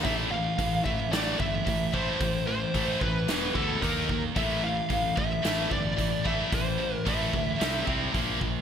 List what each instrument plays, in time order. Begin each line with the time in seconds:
0.03 fingered electric bass A1, distorted electric guitar A2 E3 A3, lead electric guitar E5, kick, open hi-hat
0.31 distorted electric guitar A2 E3, lead electric guitar F5
0.58 fingered electric bass A1, distorted electric guitar A2 E3, kick, open hi-hat
0.84 fingered electric bass A1, distorted electric guitar A2 E3, lead electric guitar E5, kick
1.11 fingered electric bass A1, distorted electric guitar A2 E3 A3, lead electric guitar D5, snare, open hi-hat
1.38 fingered electric bass G1, distorted electric guitar A2 E3, lead electric guitar E5, kick
1.65 fingered electric bass A1, distorted electric guitar A2 E3, kick, open hi-hat
1.92 distorted electric guitar A2 E3 A3, lead electric guitar C5, kick
2.20 fingered electric bass A1, distorted electric guitar A2 E3, kick, open hi-hat
2.47 distorted electric guitar A2 E3, lead electric guitar C5
2.74 fingered electric bass A1, distorted electric guitar A2 E3 A3, kick, open hi-hat
3.01 fingered electric bass A1, distorted electric guitar A2 E3, lead electric guitar B4, kick
3.27 fingered electric bass E1, distorted electric guitar E2 B2 E3, snare, open hi-hat
3.55 fingered electric bass D2, distorted electric guitar E2 B2 E3, lead electric guitar A4, kick
3.81 fingered electric bass D#2, distorted electric guitar D#3 A#3 D#4, lead electric guitar A#4, kick, open hi-hat
4.08 distorted electric guitar D#3 A#3, kick
4.35 fingered electric bass A1, distorted electric guitar A2 E3 A3, lead electric guitar E5, kick, open hi-hat
4.63 distorted electric guitar A2 E3, lead electric guitar F5
4.90 fingered electric bass A1, distorted electric guitar A2 E3, kick, open hi-hat
5.16 fingered electric bass A1, distorted electric guitar A2 E3, lead electric guitar E5, kick
5.43 fingered electric bass A1, distorted electric guitar A2 E3 A3, snare, open hi-hat
5.69 fingered electric bass G1, distorted electric guitar A2 E3, lead electric guitar D5, kick
5.97 fingered electric bass A1, distorted electric guitar A2 E3, kick, open hi-hat
6.24 distorted electric guitar A2 E3 A3, lead electric guitar E5, kick
6.51 fingered electric bass A1, distorted electric guitar A2 E3, lead electric guitar C5, kick, open hi-hat
6.78 distorted electric guitar A2 E3
6.97 lead electric guitar A#4
7.05 fingered electric bass A1, distorted electric guitar A2 E3 A3, lead electric guitar E5, kick, open hi-hat
7.33 fingered electric bass D2, distorted electric guitar A2 E3, kick
7.60 fingered electric bass C2, distorted electric guitar C3 G3 C4, snare, open hi-hat
7.86 fingered electric bass C2, distorted electric guitar C3 G3 C4, kick
8.12 fingered electric bass A#1, distorted electric guitar A#2 F3 A#3, kick, open hi-hat
8.41 distorted electric guitar A#2 F3, kick